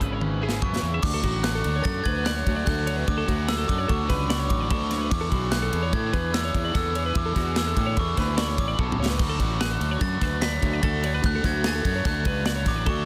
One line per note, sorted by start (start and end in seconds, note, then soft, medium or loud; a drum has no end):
0.00 0.59 G#1 medium
0.00 0.41 C#3 medium
0.00 0.61 C#3 medium
0.00 1.01 E3 medium
0.00 0.41 G#3 medium
0.00 0.62 B3 medium
0.00 0.20 C#4 medium
0.00 0.42 C#4 medium
0.00 0.40 E4 medium
0.00 0.41 E4 medium
0.00 0.13 B4 medium
0.00 0.58 E6 medium
0.00 kick medium
0.00 closed hi-hat medium
0.13 0.22 C#5 medium
0.21 0.63 C#4 medium
0.21 0.43 B4 medium
0.21 high tom medium
0.41 1.04 G#3 medium
0.41 1.03 C#4 medium
0.41 1.02 E4 medium
0.41 0.63 E4 medium
0.41 0.63 G#4 medium
0.45 1.03 C#3 medium
0.45 snare medium
0.62 0.81 F#2 medium
0.62 1.01 C#3 medium
0.62 1.02 B3 medium
0.62 1.02 C#4 medium
0.62 0.83 E4 medium
0.62 0.83 B4 medium
0.62 1.01 C#6 medium
0.62 kick loud
0.62 mid tom medium
0.76 snare medium
0.83 1.01 E2 medium
0.83 1.02 E4 medium
0.94 1.04 E5 medium
1.03 1.22 D2 medium
1.03 1.84 D3 medium
1.03 1.44 F#3 loud
1.03 1.25 A3 loud
1.03 1.24 D4 loud
1.03 1.22 F#4 loud
1.03 1.45 D6 loud
1.03 kick loud
1.03 crash loud
1.14 1.24 A4 medium
1.23 1.61 A1 medium
1.23 1.45 A3 medium
1.23 1.45 D4 medium
1.23 1.47 F#4 medium
1.23 1.44 F#4 medium
1.23 kick medium
1.23 ride medium
1.43 1.85 F#3 medium
1.43 1.67 A3 medium
1.43 1.66 D4 medium
1.43 1.64 F#4 loud
1.43 1.55 G#4 medium
1.43 1.82 F#6 loud
1.43 snare loud
1.43 ride loud
1.55 1.75 A4 medium
1.64 1.84 D2 medium
1.64 1.85 A3 medium
1.64 1.86 D4 medium
1.64 1.87 F#4 medium
1.64 ride medium
1.76 1.86 C#5 medium
1.84 2.04 F#2 loud
1.84 2.24 D3 medium
1.84 2.25 F#3 medium
1.84 2.08 A3 medium
1.84 2.07 D4 medium
1.84 2.04 F#4 loud
1.84 2.06 A4 medium
1.84 2.06 A6 loud
1.84 kick loud
1.84 snare soft
1.84 ride medium
2.04 2.42 D2 medium
2.04 2.28 D4 medium
2.04 2.28 F#4 medium
2.04 2.26 B4 medium
2.04 2.24 G#6 medium
2.04 kick medium
2.04 ride medium
2.09 2.27 A3 medium
2.25 2.65 D3 loud
2.25 2.66 F#3 loud
2.25 2.49 A3 loud
2.25 2.48 D4 loud
2.25 2.45 F#4 loud
2.25 2.36 D5 medium
2.25 2.65 F#6 loud
2.25 snare loud
2.25 ride loud
2.37 2.56 C#5 medium
2.46 2.65 D2 loud
2.46 2.68 A3 medium
2.46 2.68 D4 medium
2.46 2.68 F#4 medium
2.46 kick medium
2.46 ride medium
2.56 2.67 D5 medium
2.66 3.04 D2 loud
2.66 3.06 D3 medium
2.66 3.07 F#3 loud
2.66 2.90 A3 loud
2.66 2.88 D4 loud
2.66 2.86 F#4 loud
2.66 2.87 A4 medium
2.66 3.09 F#6 loud
2.66 kick loud
2.66 snare soft
2.66 ride loud
2.87 3.08 A3 medium
2.87 3.09 D4 medium
2.87 3.09 F#4 medium
2.87 2.97 C#5 medium
2.87 ride medium
2.97 3.08 B4 medium
3.07 3.26 D2 loud
3.07 3.48 D3 loud
3.07 3.46 F#3 loud
3.07 3.31 A3 medium
3.07 3.29 D4 loud
3.07 3.26 F#4 loud
3.07 3.50 D6 loud
3.07 kick loud
3.07 ride loud
3.18 3.28 A4 medium
3.27 3.65 D2 loud
3.27 3.49 A3 medium
3.27 3.50 D4 medium
3.27 3.50 F#4 medium
3.27 3.48 F#4 medium
3.27 kick medium
3.27 ride medium
3.47 3.88 F#3 medium
3.47 3.71 A3 medium
3.47 3.70 D4 medium
3.47 3.67 F#4 medium
3.47 3.57 G#4 medium
3.47 3.70 E6 loud
3.47 snare loud
3.47 ride loud
3.58 3.78 A4 medium
3.68 3.88 F#2 medium
3.68 3.90 A3 medium
3.68 3.91 D4 medium
3.68 3.90 F#4 medium
3.68 3.88 D6 loud
3.68 kick medium
3.68 ride medium
3.78 3.89 C#5 medium
3.88 4.08 D2 medium
3.88 4.28 D3 medium
3.88 4.29 F#3 medium
3.88 4.12 A3 loud
3.88 4.10 D4 loud
3.88 4.08 F#4 loud
3.88 4.09 A4 medium
3.88 4.11 C#6 medium
3.88 kick loud
3.88 ride loud
4.09 4.50 C#2 loud
4.09 4.30 A3 medium
4.09 4.31 D4 medium
4.09 4.31 F#4 medium
4.09 4.29 B4 medium
4.09 4.29 B5 medium
4.09 kick medium
4.09 snare soft
4.09 ride medium
4.29 4.69 D3 loud
4.29 4.70 F#3 loud
4.29 4.53 A3 loud
4.29 4.52 D4 loud
4.29 4.49 F#4 loud
4.29 4.39 D5 medium
4.29 4.50 C#6 medium
4.29 snare loud
4.29 ride loud
4.39 4.60 C#5 medium
4.49 4.71 A1 medium
4.49 4.72 D4 medium
4.49 4.72 F#4 medium
4.49 4.71 D6 loud
4.49 kick medium
4.49 ride medium
4.54 4.72 A3 medium
4.60 4.70 D5 medium
4.70 5.08 D2 loud
4.70 5.10 D3 loud
4.70 5.10 F#3 loud
4.70 4.93 A3 loud
4.70 4.92 D4 loud
4.70 4.90 F#4 loud
4.70 4.91 A4 medium
4.70 5.13 C#6 medium
4.70 kick loud
4.70 ride loud
4.91 5.11 A3 medium
4.91 5.12 D4 medium
4.91 5.10 F#4 medium
4.91 5.01 C#5 medium
4.91 snare soft
4.91 ride medium
5.01 5.12 B4 medium
5.10 5.30 E2 medium
5.10 5.50 E3 medium
5.10 5.33 B3 loud
5.10 5.31 D4 loud
5.10 5.29 G#4 loud
5.10 5.49 D6 loud
5.10 kick loud
5.10 ride loud
5.21 5.31 A4 medium
5.30 5.69 B1 loud
5.30 5.51 B3 medium
5.30 5.52 D4 medium
5.30 5.52 F#4 medium
5.30 5.52 G#4 medium
5.30 kick medium
5.30 ride medium
5.50 5.91 E3 medium
5.50 5.74 B3 medium
5.50 5.73 D4 medium
5.50 5.62 G#4 medium
5.50 5.70 G#4 loud
5.50 5.94 F#6 loud
5.50 snare loud
5.50 ride medium
5.62 5.83 A4 medium
5.72 5.92 E2 medium
5.72 5.93 B3 medium
5.72 5.94 D4 medium
5.72 5.93 G#4 medium
5.72 ride medium
5.82 5.93 C#5 medium
5.91 6.12 A2 loud
5.91 6.31 E3 medium
5.91 6.14 B3 loud
5.91 6.13 D4 medium
5.91 6.11 G#4 loud
5.91 6.13 A4 medium
5.91 6.31 G#6 medium
5.91 kick medium
5.91 ride medium
6.12 6.50 E2 medium
6.12 6.32 B3 medium
6.12 6.34 D4 medium
6.12 6.34 G#4 medium
6.12 6.34 B4 medium
6.12 kick medium
6.12 ride medium
6.32 6.72 E3 loud
6.32 6.55 B3 loud
6.32 6.54 D4 loud
6.32 6.52 G#4 loud
6.32 6.44 D5 medium
6.32 6.75 E6 loud
6.32 snare loud
6.32 ride medium
6.45 6.64 C#5 medium
6.53 6.73 E2 loud
6.53 6.73 B3 medium
6.53 6.75 D4 medium
6.53 6.75 G#4 medium
6.53 kick medium
6.53 ride medium
6.65 6.75 D5 medium
6.73 7.12 E2 medium
6.73 7.12 E3 medium
6.73 6.96 B3 loud
6.73 6.95 D4 loud
6.73 6.93 G#4 loud
6.73 6.95 A4 medium
6.73 7.18 E6 loud
6.73 kick loud
6.73 snare soft
6.73 ride loud
6.94 7.14 B3 medium
6.94 7.16 D4 medium
6.94 7.16 G#4 medium
6.94 7.05 C#5 medium
6.94 ride medium
7.06 7.16 B4 medium
7.14 7.34 E2 medium
7.14 7.54 E3 loud
7.14 7.37 B3 loud
7.14 7.36 D4 loud
7.14 7.34 G#4 loud
7.14 7.58 D6 loud
7.14 kick loud
7.14 ride loud
7.26 7.35 A4 medium
7.35 7.73 E2 loud
7.35 7.55 B3 medium
7.35 7.57 D4 medium
7.35 7.56 F#4 medium
7.35 7.57 G#4 medium
7.35 kick medium
7.35 snare soft
7.35 ride medium
7.55 7.95 E3 medium
7.55 7.77 B3 medium
7.55 7.76 D4 loud
7.55 7.66 G#4 medium
7.55 7.74 G#4 medium
7.55 7.78 E6 medium
7.55 snare loud
7.55 ride loud
7.66 7.87 A4 medium
7.75 7.95 A2 medium
7.75 7.96 B3 medium
7.75 7.98 D4 medium
7.75 7.98 G#4 medium
7.75 7.87 D6 medium
7.75 kick medium
7.75 ride medium
7.87 7.97 C#5 medium
7.96 8.16 E2 medium
7.96 8.36 E3 medium
7.96 8.18 B3 loud
7.96 8.18 D4 loud
7.96 8.15 G#4 loud
7.96 8.17 A4 medium
7.96 8.19 C#6 medium
7.96 kick loud
7.96 ride medium
8.16 8.58 D2 loud
8.16 8.37 B3 medium
8.16 8.39 D4 medium
8.16 8.39 G#4 medium
8.16 8.37 B4 medium
8.16 8.40 B5 medium
8.16 kick medium
8.16 snare soft
8.16 ride medium
8.37 8.77 E3 medium
8.37 8.59 B3 loud
8.37 8.58 D4 loud
8.37 8.56 G#4 loud
8.37 8.48 D5 medium
8.37 8.47 C#6 medium
8.37 snare loud
8.37 ride loud
8.48 8.68 C#5 medium
8.57 8.77 A1 medium
8.57 8.77 B3 medium
8.57 8.79 D4 medium
8.57 8.80 G#4 medium
8.57 8.97 D6 medium
8.57 kick medium
8.57 ride medium
8.68 8.78 D5 medium
8.78 8.97 B1 medium
8.78 9.18 E3 loud
8.78 9.00 B3 loud
8.78 9.00 D4 loud
8.78 8.97 G#4 loud
8.78 8.99 A4 medium
8.78 kick loud
8.92 mid tom medium
8.98 9.17 C#2 medium
8.98 9.19 B3 medium
8.98 9.20 D4 medium
8.98 9.18 G#4 medium
8.98 9.09 C#5 medium
9.06 9.19 B4 medium
9.06 snare loud
9.18 9.38 D2 loud
9.18 10.00 D3 medium
9.18 9.59 F#3 medium
9.18 9.41 A3 loud
9.18 9.40 D4 loud
9.18 9.38 F#4 loud
9.18 kick loud
9.18 ride loud
9.18 crash loud
9.29 9.40 A4 medium
9.39 9.76 A1 loud
9.39 9.60 A3 medium
9.39 9.61 D4 medium
9.39 9.62 F#4 medium
9.39 9.60 F#4 medium
9.39 kick medium
9.39 ride medium
9.59 10.00 F#3 medium
9.59 9.82 A3 medium
9.59 9.81 D4 medium
9.59 9.78 F#4 medium
9.59 9.71 G#4 medium
9.59 9.98 F#6 loud
9.59 snare loud
9.59 ride medium
9.71 9.91 A4 medium
9.79 9.99 D2 medium
9.79 10.01 A3 medium
9.79 10.02 D4 medium
9.79 10.03 F#4 medium
9.79 ride medium
9.91 10.02 C#5 medium
10.00 10.19 F#2 loud
10.00 10.40 D3 medium
10.00 10.40 F#3 loud
10.00 10.22 A3 loud
10.00 10.22 D4 loud
10.00 10.19 F#4 loud
10.00 10.23 A4 medium
10.00 10.39 A6 loud
10.00 kick loud
10.00 snare soft
10.00 ride medium
10.21 10.58 D2 medium
10.21 10.41 A3 medium
10.21 10.43 D4 medium
10.21 10.43 F#4 medium
10.21 10.43 B4 medium
10.21 kick medium
10.21 snare soft
10.21 ride medium
10.41 10.80 D3 loud
10.41 10.82 F#3 loud
10.41 10.63 A3 loud
10.41 10.63 D4 loud
10.41 10.60 F#4 loud
10.41 10.54 D5 medium
10.41 10.80 B6 loud
10.41 snare loud
10.41 ride medium
10.54 10.74 C#5 medium
10.61 10.81 D2 loud
10.61 10.82 A3 medium
10.61 10.84 D4 medium
10.61 10.83 F#4 medium
10.61 kick medium
10.61 ride medium
10.74 10.83 D5 medium
10.81 11.20 D2 loud
10.81 11.21 D3 loud
10.81 11.22 F#3 medium
10.81 11.04 A3 medium
10.81 11.03 D4 loud
10.81 11.01 F#4 loud
10.81 11.04 A4 medium
10.81 11.21 A6 loud
10.81 kick loud
10.81 ride loud
11.02 11.23 A3 medium
11.02 11.24 D4 medium
11.02 11.24 F#4 medium
11.02 11.14 C#5 medium
11.02 ride medium
11.14 11.24 B4 medium
11.22 11.42 D2 loud
11.22 11.63 D3 medium
11.22 11.63 F#3 loud
11.22 11.46 A3 loud
11.22 11.45 D4 loud
11.22 11.42 F#4 loud
11.22 11.46 F#6 loud
11.22 kick loud
11.22 ride loud
11.35 11.45 A4 medium
11.43 11.81 D2 loud
11.43 11.64 A3 medium
11.43 11.66 D4 medium
11.43 11.66 F#4 medium
11.43 11.65 F#4 medium
11.43 11.66 G#6 loud
11.43 kick medium
11.43 snare soft
11.43 ride medium
11.64 12.04 F#3 medium
11.64 11.86 A3 medium
11.64 11.86 D4 medium
11.64 11.83 F#4 medium
11.64 11.75 G#4 medium
11.64 11.86 A6 loud
11.64 snare loud
11.64 ride loud
11.75 11.95 A4 medium
11.84 12.03 F#2 medium
11.84 12.04 A3 medium
11.84 12.06 D4 medium
11.84 12.06 F#4 medium
11.84 11.95 G#6 medium
11.84 kick medium
11.84 ride medium
11.96 12.05 C#5 medium
12.04 12.23 D2 medium
12.04 12.44 D3 medium
12.04 12.45 F#3 medium
12.04 12.26 A3 loud
12.04 12.26 D4 loud
12.04 12.23 F#4 loud
12.04 12.26 A4 medium
12.04 12.63 F#6 medium
12.04 kick loud
12.04 snare soft
12.04 ride loud
12.24 12.66 C#2 loud
12.24 12.45 A3 medium
12.24 12.47 D4 medium
12.24 12.47 F#4 medium
12.24 12.46 B4 medium
12.24 kick medium
12.24 ride medium
12.45 12.84 D3 loud
12.45 12.85 F#3 loud
12.45 12.67 A3 loud
12.45 12.66 D4 loud
12.45 12.64 F#4 loud
12.45 12.55 D5 medium
12.45 snare loud
12.45 ride medium
12.56 12.76 C#5 medium
12.65 12.86 A1 loud
12.65 12.86 A3 medium
12.65 12.87 D4 medium
12.65 12.87 F#4 medium
12.65 12.88 D6 medium
12.65 kick medium
12.65 snare soft
12.65 ride medium
12.76 12.86 D5 medium
12.85 13.05 D2 loud
12.85 13.05 D3 medium
12.85 13.05 F#3 loud
12.85 13.05 A3 loud
12.85 13.05 D4 loud
12.85 13.04 F#4 loud
12.85 13.05 A4 medium
12.85 13.05 C#6 medium
12.85 kick loud
12.85 ride loud